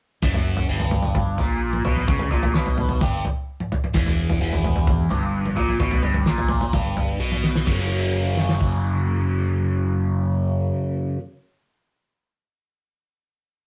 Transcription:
0.23 F#1 F#2, kick, floor tom
0.34 floor tom
0.57 floor tom
0.69 G1 G2
0.80 floor tom
0.91 floor tom, mid tom
1.02 floor tom
1.15 kick, floor tom, mid tom
1.38 A#1 A#2, floor tom
1.73 mid tom
1.84 B1 B2, floor tom
1.97 mid tom
2.08 C#2 C#3, kick, floor tom
2.19 floor tom
2.31 A#1 A#2, floor tom
2.43 floor tom
2.54 B1 B2, snare
2.66 floor tom
2.78 floor tom, mid tom
2.89 floor tom
3.01 G1 G2, kick, floor tom, mid tom
3.25 floor tom
3.60 mid tom
3.72 floor tom
3.84 mid tom
3.94 E1 E2, kick, floor tom
4.06 floor tom
4.29 floor tom
4.41 E1 E2
4.53 floor tom
4.64 floor tom, mid tom
4.76 floor tom
4.87 kick, floor tom, mid tom
5.09 G1 G2, floor tom
5.46 mid tom
5.55 A#1 A#2, floor tom
5.69 mid tom
5.80 B1 B2, kick, floor tom
5.91 floor tom
6.03 G1 G2, floor tom
6.14 floor tom
6.26 A#1 A#2, snare
6.38 floor tom
6.49 floor tom, mid tom
6.61 floor tom
6.73 G1 G2, kick, floor tom, mid tom
6.97 floor tom
7.20 B1 B2
7.32 mid tom
7.44 snare
7.55 snare
7.65 F#1 F#2 C#3 F#3 A#3 C#4, kick, crash
7.70 F#4
8.37 snare
8.49 snare
8.61 kick

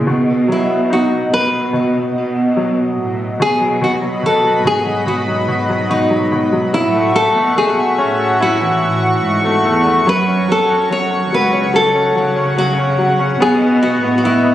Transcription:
0.06 B2 B3 F#4 D#5
0.48 F#3 E4
0.90 D#4 F#4
1.32 B2 B4
1.73 B2
2.15 B2
2.57 F#3
2.98 A2
3.39 B2 F#4 G#4 B4 D#5 B5
3.61 F#3
3.81 B2 F#4
4.02 B2 F#3
4.23 B2 A4
4.44 F#3
4.65 G#2 B2 G#4
4.85 F#3
5.06 B2 F#4
5.28 F#3
5.48 B2
5.69 F#3
5.90 B2 D#4
6.11 F#3
6.32 B2
6.53 F#3
6.72 A2 F#3 E4 F#4 E5 F#5 C#6
6.94 A3
7.15 A3 A4
7.36 B2 A3
7.57 A3 G#4
7.77 A3
7.98 A2 C#4
8.19 A4
8.40 E4 F#4
8.61 E3
8.82 A2
9.23 G#2
9.44 A3
9.65 E2 A3
9.86 A3
10.06 F#2 F#3 B4 C#5 F#5
10.28 C#4
10.48 F#3 A4
10.69 F#2 C#4
10.90 F#3 C#5
11.11 C#4
11.32 C#2 F#3 B4
11.53 C#4
11.74 F#3 A4
11.95 C#4
12.15 C#3 F#3
12.36 C#4
12.57 F#3 F#4
12.78 C#4
12.99 F#3
13.19 C#4
13.39 B2 B3 G#4 B4 D#5 C#6
13.61 B3
13.82 B3 F#4
14.02 A2 B3
14.18 F#4
14.24 B3 E4
14.44 B3

